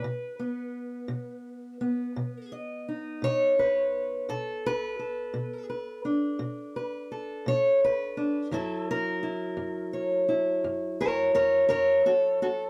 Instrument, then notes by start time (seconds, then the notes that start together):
steel-string acoustic guitar
Already playing: B4
0.04 B2
0.39 B3
1.08 B2
1.81 B3
2.16 B2
2.52 D#5
2.88 D#4
3.22 B2 C#5
3.59 B4
4.29 B2 A4
4.66 B4
4.99 A4
5.34 B2
5.70 B4
6.05 D4
6.39 B2
6.76 B4
7.12 A4
7.46 B2 C#5
7.84 B4
8.17 D4
8.51 F#2 F#3 E4 A4
8.91 A#4
9.23 E4
9.57 F#2
9.93 C#5
10.29 E4
10.64 F#2
11.01 A#4 C#5
11.35 A#4 C#5
11.69 F#2 A#4 C#5
12.06 F#4 A4
12.42 F#4 A4